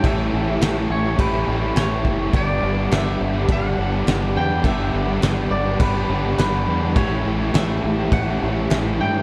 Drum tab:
CC |x-x-x-x-|x-x-x-x-|x-x-x-x-|x-x-x-x-|
SD |--o---o-|--o---o-|--o---o-|--o---o-|
BD |o---o--o|o---o---|o---o---|o---o---|